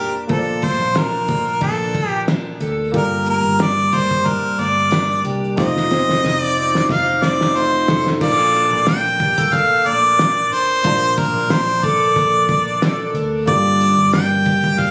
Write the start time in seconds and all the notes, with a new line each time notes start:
Already playing: F1 A#2 A#3 D4 F4 G4 A#4 D5 A5
0.27 A#1 A#2 A#3 F4 A4 C5 A5, kick, shaker
0.38 D5
0.62 A#3 C5, kick, shaker
0.81 A#1, shaker
0.95 A#1 D4 A#4, snare, shaker
1.28 A#3, kick, shaker
1.47 shaker
1.61 A#1 D4 A4, kick, shaker
1.95 A#3, kick, shaker
2.10 G4
2.28 D4, snare, shaker
2.61 D2 A4, shaker
2.92 G1 G2 A#3 F4 G4 D5, kick, shaker
2.97 A#4
3.26 A#3 A#4, shaker
3.45 G1
3.59 D4 D5, snare, shaker
3.92 A#3 C5, kick, shaker
4.11 kick, shaker
4.26 D4 A#4, kick, shaker
4.59 G1 A#3 D5, shaker
4.78 shaker
4.91 D4, snare, shaker
5.25 C2 G4, shaker
5.44 shaker
5.56 F1 F3 A3 D#4 F4 C5 D#5, kick, snare
5.76 snare
5.90 C4, snare
6.08 F1, snare
6.23 F1 D#4, snare
6.42 D5
6.58 C4
6.75 snare
6.89 F1 D#4 F5, kick, snare
7.22 C4 D5, snare
7.41 snare
7.54 A3 D#4 F4 C5
7.88 F1 A4, snare
8.06 snare
8.19 A#1 A#2 A#3 D4 F4 A4 D5, kick, crash
8.24 D5
8.53 D4, shaker
8.73 A#1
8.86 A#3 G5, snare, shaker
9.20 G4, kick, shaker
9.38 A4, kick, shaker
9.53 D4 F5, kick, shaker
9.86 A#1 A#3 D5, shaker
10.05 shaker
10.19 snare, shaker
10.52 F1 D4 C5, shaker
10.70 shaker
10.83 A#1 A#2 A#3 D4 F4 D5 A5, kick, shaker
11.17 D4 A#4, kick, shaker
11.36 A#1
11.50 A#1 A#3 C5, snare, shaker
11.83 A4 D5, kick, shaker
12.02 shaker
12.16 A#1 D4, kick, shaker
12.49 A#3, kick, shaker
12.67 shaker
12.82 A4, snare, shaker
13.14 D2 D4, shaker
13.46 G1 G2 A#3 D4 F4 G4 D5, kick, shaker
13.80 D4, shaker
13.98 G1
14.12 A#3 G5, snare, shaker
14.46 G4, kick, shaker
14.64 kick
14.78 D4 F5, kick, shaker